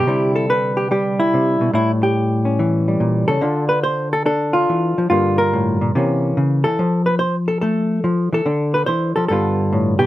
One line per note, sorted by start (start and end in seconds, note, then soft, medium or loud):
0.00 1.74 D3 medium
0.00 0.35 G4 loud
0.07 1.33 C3 medium
0.07 0.91 G3 soft
0.07 0.49 E4 soft
0.36 0.76 A4 medium
0.50 1.19 B4 medium
0.77 0.90 G4 medium
0.91 2.86 G3 medium
0.91 1.61 G4 medium
1.20 1.74 E4 medium
1.34 1.61 C3 medium
1.61 1.73 B2 medium
1.73 2.99 A2 medium
1.73 1.91 E4 medium
2.03 3.27 G4 medium
2.45 3.40 C#4 soft
2.59 3.41 E3 medium
2.88 3.42 G3 soft
3.00 3.28 A#2 medium
3.28 3.42 C#3 medium
3.28 3.68 A4 loud
3.41 4.67 D3 medium
3.41 4.24 D4 soft
3.41 4.52 F4 soft
3.69 3.83 B4 medium
3.83 4.12 C5 loud
4.13 4.25 A4 loud
4.26 5.08 D4 medium
4.26 4.96 A4 medium
4.53 5.09 F4 medium
4.69 4.97 E3 medium
4.98 5.11 F3 medium
5.10 5.92 G2 medium
5.10 5.94 D3 soft
5.10 5.93 A#3 soft
5.10 5.80 F4 loud
5.38 6.64 A#4 loud
5.53 5.80 A2 medium
5.81 5.94 A#2 medium
5.95 6.36 C3 medium
5.95 6.65 E3 soft
5.95 6.77 A#3 soft
5.95 6.78 C#4 soft
6.37 6.64 C#3 medium
6.64 6.78 E3 medium
6.64 7.06 A4 medium
6.79 8.03 F3 medium
7.06 7.19 B4 medium
7.19 7.35 C5 medium
7.48 7.60 A4 medium
7.61 8.04 A3 medium
7.61 8.31 A4 medium
8.04 8.32 F3 medium
8.33 8.45 E3 medium
8.33 9.14 A4 medium
8.46 8.87 D3 medium
8.46 9.32 D4 soft
8.74 8.86 B4 medium
8.86 9.16 E3 medium
8.86 9.15 C5 loud
9.16 9.30 F3 medium
9.16 9.27 A4 medium
9.28 10.06 G2 medium
9.28 10.06 D3 soft
9.28 10.06 B3 soft
9.28 9.99 A4 medium
9.32 10.06 F4 soft
9.73 9.99 A2 medium
9.99 10.06 B2 medium
9.99 10.06 G4 loud